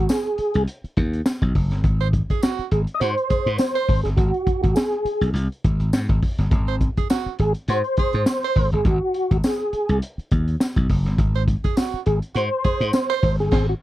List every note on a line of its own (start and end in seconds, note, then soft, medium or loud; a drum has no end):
0.00 0.10 F#4 medium
0.09 0.64 G#4 medium
0.09 snare loud
0.09 tambourine loud
0.25 closed hi-hat soft
0.38 muted slap bass stroke soft
0.38 closed hi-hat medium
0.54 0.65 C2 medium
0.54 closed hi-hat medium
0.67 closed hi-hat loud
0.84 muted slap bass stroke soft
0.84 closed hi-hat soft
0.97 1.20 D#2 loud
0.97 kick loud
0.97 closed hi-hat medium
1.13 closed hi-hat medium
1.26 snare loud
1.26 tambourine medium
1.42 1.52 B1 medium
1.42 kick medium
1.42 closed hi-hat soft
1.55 1.71 F#1 medium
1.55 kick loud
1.55 open hi-hat medium
1.71 1.82 G1 medium
1.71 snare soft
1.71 closed hi-hat medium
1.84 2.20 G#1 medium
1.84 kick loud
1.84 closed hi-hat medium
2.00 2.08 C5 medium
2.00 closed hi-hat soft
2.13 kick medium
2.13 closed hi-hat medium
2.30 2.44 G#4 loud
2.30 kick medium
2.30 closed hi-hat medium
2.43 2.66 F#4 loud
2.43 snare loud
2.43 tambourine loud
2.59 muted slap bass stroke soft
2.59 closed hi-hat soft
2.71 2.85 G#1 loud
2.71 2.82 G#4 medium
2.71 closed hi-hat medium
2.87 closed hi-hat medium
2.94 3.01 D#5 medium
3.00 3.14 G#2 loud
3.00 3.11 F#4 medium
3.00 3.57 C5 loud
3.00 closed hi-hat loud
3.18 closed hi-hat soft
3.30 3.53 G#4 medium
3.30 muted slap bass stroke soft
3.30 kick medium
3.30 closed hi-hat medium
3.46 3.57 G#2 medium
3.46 closed hi-hat soft
3.58 4.01 C5 loud
3.58 snare medium
3.58 tambourine medium
3.75 3.99 C5 loud
3.75 closed hi-hat soft
3.89 4.02 G#1 medium
3.89 kick medium
3.89 open hi-hat medium
4.03 4.15 G1 medium
4.03 4.10 G#4 medium
4.03 snare soft
4.03 closed hi-hat medium
4.16 4.31 G#1 loud
4.16 4.61 F#4 medium
4.16 kick loud
4.16 closed hi-hat medium
4.34 closed hi-hat soft
4.47 kick loud
4.47 closed hi-hat medium
4.63 4.74 G#1 medium
4.63 4.75 F#4 medium
4.63 kick medium
4.63 closed hi-hat medium
4.76 5.30 G#4 medium
4.76 snare loud
4.76 tambourine medium
4.92 closed hi-hat soft
5.05 muted slap bass stroke soft
5.05 closed hi-hat medium
5.21 5.32 B1 medium
5.21 closed hi-hat medium
5.34 5.47 C2 loud
5.34 closed hi-hat loud
5.52 closed hi-hat soft
5.64 5.77 G#1 medium
5.64 kick loud
5.64 closed hi-hat medium
5.80 5.90 G#1 medium
5.80 closed hi-hat medium
5.93 6.06 G#2 loud
5.93 snare medium
5.93 tambourine medium
6.09 6.20 G#1 loud
6.09 kick loud
6.09 closed hi-hat soft
6.23 kick medium
6.23 open hi-hat medium
6.38 6.49 G1 medium
6.38 snare soft
6.38 closed hi-hat soft
6.51 6.88 G#1 loud
6.51 kick loud
6.51 closed hi-hat medium
6.68 6.76 C5 medium
6.68 closed hi-hat soft
6.81 kick loud
6.81 closed hi-hat medium
6.97 7.07 G#4 medium
6.97 kick medium
6.97 closed hi-hat medium
7.10 7.33 F#4 loud
7.10 snare loud
7.10 tambourine medium
7.26 muted slap bass stroke soft
7.26 closed hi-hat soft
7.39 7.52 G#1 medium
7.39 7.53 G#4 medium
7.39 closed hi-hat medium
7.54 closed hi-hat medium
7.68 7.81 G#2 loud
7.68 7.79 F#4 medium
7.68 8.28 C5 loud
7.68 closed hi-hat loud
7.84 closed hi-hat soft
7.97 8.22 G#4 loud
7.97 muted slap bass stroke soft
7.97 kick loud
7.97 closed hi-hat medium
8.13 8.24 G#2 medium
8.13 closed hi-hat medium
8.26 8.70 C5 loud
8.26 snare medium
8.26 tambourine loud
8.43 8.67 C5 loud
8.43 closed hi-hat soft
8.56 8.69 G#1 medium
8.56 kick medium
8.56 open hi-hat medium
8.72 8.83 G1 medium
8.72 8.85 G#4 medium
8.72 closed hi-hat soft
8.85 8.98 G#1 loud
8.85 9.31 F#4 medium
8.85 kick loud
8.85 closed hi-hat medium
9.14 closed hi-hat medium
9.31 9.41 G#1 medium
9.31 9.37 F#4 medium
9.31 kick medium
9.31 closed hi-hat soft
9.44 9.99 G#4 medium
9.44 snare loud
9.44 tambourine medium
9.60 closed hi-hat soft
9.73 muted slap bass stroke soft
9.73 closed hi-hat medium
9.89 9.99 C2 medium
9.89 closed hi-hat soft
10.02 closed hi-hat loud
10.18 muted slap bass stroke soft
10.18 closed hi-hat soft
10.31 10.55 D#2 medium
10.31 kick loud
10.31 closed hi-hat medium
10.48 closed hi-hat medium
10.60 snare medium
10.60 tambourine loud
10.76 10.87 B1 medium
10.76 kick loud
10.76 closed hi-hat soft
10.89 11.06 F#1 loud
10.89 kick medium
10.89 open hi-hat medium
11.05 11.16 G1 medium
11.05 snare soft
11.05 closed hi-hat medium
11.18 11.55 G#1 medium
11.18 kick loud
11.18 closed hi-hat medium
11.35 11.43 C5 medium
11.35 closed hi-hat soft
11.48 kick medium
11.48 closed hi-hat medium
11.64 11.79 G#4 medium
11.64 kick medium
11.64 closed hi-hat soft
11.77 12.00 F#4 loud
11.77 snare loud
11.77 tambourine medium
11.93 muted slap bass stroke soft
11.93 closed hi-hat soft
12.06 12.19 G#1 medium
12.06 12.19 G#4 medium
12.06 closed hi-hat medium
12.22 closed hi-hat medium
12.34 12.48 G#2 loud
12.34 12.44 F#4 medium
12.34 12.93 C5 loud
12.34 closed hi-hat loud
12.64 12.87 G#4 loud
12.64 muted slap bass stroke soft
12.64 kick medium
12.64 closed hi-hat medium
12.80 12.91 G#2 loud
12.80 closed hi-hat medium
12.93 13.36 C5 loud
12.93 snare loud
12.93 tambourine loud
13.10 13.33 C5 loud
13.10 closed hi-hat soft
13.23 13.39 G#1 medium
13.23 kick medium
13.23 open hi-hat medium
13.39 13.49 G1 medium
13.39 13.67 G#4 medium
13.39 snare soft
13.39 closed hi-hat soft
13.51 13.72 G#1 medium
13.51 13.67 C5 medium
13.51 kick loud
13.51 snare loud
13.51 crash medium
13.69 13.75 F#4 medium